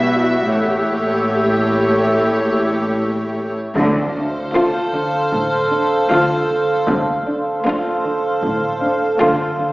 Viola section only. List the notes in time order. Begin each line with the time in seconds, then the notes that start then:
Already playing: G3 F#4
0.52 A3 G4
4.56 A3
6.10 A3
7.65 A3
9.20 A3